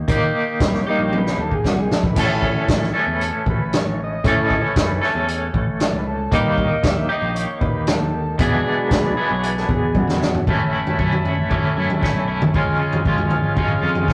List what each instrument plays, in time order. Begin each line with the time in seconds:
0.08 picked electric bass D#3, clean electric guitar D#3 A#3 D#4 G4, kick, closed hi-hat
0.60 picked electric bass C2, transistor combo organ B4, kick, snare, closed hi-hat
0.75 transistor combo organ C#5, snare
0.87 clean electric guitar D#3 A#3 D#4 G4, transistor combo organ G3 A#3 D#4 D#5
0.99 picked electric bass A#1
1.03 transistor combo organ C#5
1.12 high tom
1.17 transistor combo organ B4
1.27 snare
1.38 picked electric bass D#2, transistor combo organ A4
1.51 transistor combo organ G#4, kick
1.64 picked electric bass C2, transistor combo organ F#4, kick, snare
1.79 transistor combo organ G#4
1.90 picked electric bass A#1, transistor combo organ A4, snare
2.03 transistor combo organ B4, kick
2.13 picked electric bass A1, clean electric guitar A2 E3, transistor combo organ A3 C#4 E4, kick, closed hi-hat, crash
2.18 clean electric guitar A3 C#4 A4
2.42 kick
2.68 picked electric bass A1, kick, snare, closed hi-hat
2.83 snare
2.94 clean electric guitar A2 E3 A3 C#4 A4
3.07 picked electric bass E2
3.14 transistor combo organ B4
3.21 transistor combo organ A4, closed hi-hat
3.46 picked electric bass A1, transistor combo organ B4, kick
3.73 transistor combo organ C#5, snare, closed hi-hat
3.85 picked electric bass A1
4.04 transistor combo organ D#5
4.24 clean electric guitar A2 E3 A3 C#4 A4, picked electric bass A2, transistor combo organ A3 C#4 E4, kick, closed hi-hat
4.30 transistor combo organ C#5
4.46 transistor combo organ D#5
4.50 kick
4.62 transistor combo organ C#5
4.76 picked electric bass F#1, transistor combo organ B4, kick, snare, closed hi-hat
5.02 clean electric guitar A2 E3 A3 C#4 A4, snare
5.06 transistor combo organ A4
5.15 picked electric bass E2
5.28 closed hi-hat
5.54 picked electric bass A1, kick
5.80 snare, closed hi-hat
5.93 picked electric bass C#2
5.99 transistor combo organ B4
6.07 transistor combo organ A4
6.31 picked electric bass D#2, clean electric guitar D#3 A#3 D#4 G4, transistor combo organ G3 A#3 D#4, kick, closed hi-hat
6.36 transistor combo organ B4
6.51 transistor combo organ C#5
6.58 kick
6.68 transistor combo organ D#5
6.83 picked electric bass D#2, transistor combo organ E5, kick, snare, closed hi-hat
7.09 clean electric guitar D#3 A#3 D#4 G4, transistor combo organ D#5
7.22 picked electric bass A#1
7.35 transistor combo organ C#5, closed hi-hat
7.61 picked electric bass D#2, transistor combo organ B4, kick
7.87 transistor combo organ A4, snare, closed hi-hat
8.00 picked electric bass D#2
8.38 clean electric guitar E2 B2 E3 B3 D4 G#4, picked electric bass E2, transistor combo organ F#3 G#3 D4, kick, closed hi-hat
8.86 transistor combo organ A#4
8.91 picked electric bass D2, transistor combo organ B4, kick, snare, closed hi-hat
9.17 clean electric guitar E2 B2 E3 B3 D4 G#4
9.31 picked electric bass B1, transistor combo organ C#5
9.43 closed hi-hat
9.48 transistor combo organ B4
9.57 transistor combo organ A4, snare
9.69 picked electric bass E2, kick
9.73 transistor combo organ G#4
9.95 transistor combo organ F#4, kick, high tom
10.07 picked electric bass E2, snare
10.22 snare
10.34 floor tom
10.47 picked electric bass A1, clean electric guitar A2 E3 A3 C#4 E4, transistor combo organ C#4 A4 E5 A5, kick, floor tom
10.73 clean electric guitar A3 C#4 E4
10.87 floor tom
10.98 picked electric bass F#2, clean electric guitar E3 A3 C#4 E4, kick
11.12 floor tom
11.25 floor tom
11.38 picked electric bass A1
11.50 clean electric guitar A2 E3 A3 C#4 E4, kick, floor tom
11.76 picked electric bass F#2, clean electric guitar A3 C#4 E4
11.90 floor tom
12.02 clean electric guitar E3 A3 C#4 E4, kick, snare
12.16 picked electric bass B1
12.28 clean electric guitar A3 C#4 E4
12.42 floor tom, mid tom
12.54 picked electric bass C#2, clean electric guitar C#3 F3 G#3 C#4 F4, transistor combo organ G#4 F5 G#5, kick, floor tom
12.79 clean electric guitar G#3 C#4 F4
12.93 floor tom
13.05 picked electric bass C#2, clean electric guitar F3 G#3 C#4 F4, kick
13.18 floor tom
13.30 floor tom
13.44 picked electric bass G#1
13.56 clean electric guitar C#3 F3 G#3 C#4 F4, kick, floor tom
13.82 picked electric bass F2, clean electric guitar G#3 C#4 F4
13.95 floor tom
14.08 clean electric guitar F3 G#3 C#4, kick, snare